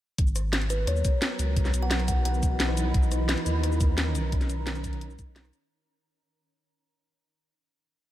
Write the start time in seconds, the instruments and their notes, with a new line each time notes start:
0.18 sub bass G#1, ambient pad F#3 B3 A#4, kick, closed hi-hat
0.27 shaker
0.36 cross-stick, closed hi-hat, shaker
0.53 snare, closed hi-hat
0.62 closed hi-hat
0.70 kalimba B4, closed hi-hat, shaker
0.87 sub bass D#2, kalimba C#5, cross-stick, closed hi-hat
0.96 shaker
1.05 kick, closed hi-hat, shaker
1.22 snare, closed hi-hat
1.39 sub bass C#2, closed hi-hat, shaker
1.57 ambient pad E3 D#4 B4, kick, closed hi-hat
1.65 snare, shaker
1.74 sub bass B1, closed hi-hat, shaker
1.83 kalimba F#5
1.91 snare, closed hi-hat
2.00 cross-stick, closed hi-hat
2.08 kalimba F#5, kick, closed hi-hat, shaker
2.25 kalimba F#5, closed hi-hat
2.34 shaker
2.43 kick, closed hi-hat, shaker
2.60 snare, closed hi-hat
2.69 cross-stick
2.77 closed hi-hat, shaker
2.94 sub bass B1, ambient pad D#3 C#4 A#4, kick, closed hi-hat
3.03 shaker
3.12 cross-stick, closed hi-hat, shaker
3.29 snare, closed hi-hat
3.37 closed hi-hat
3.46 sub bass D#2, closed hi-hat, shaker
3.63 cross-stick, closed hi-hat
3.72 shaker
3.80 kick, closed hi-hat, shaker
3.98 snare, closed hi-hat
4.15 sub bass B1, closed hi-hat, shaker
4.32 kick, closed hi-hat
4.41 snare, closed hi-hat, shaker
4.50 closed hi-hat, shaker
4.67 snare, closed hi-hat
4.75 cross-stick, closed hi-hat, shaker
4.84 kick, closed hi-hat, shaker
4.93 closed hi-hat
5.01 closed hi-hat
5.10 shaker
5.19 sub bass B1, kick, closed hi-hat, shaker
5.36 snare, closed hi-hat
5.45 cross-stick, shaker
5.53 closed hi-hat, shaker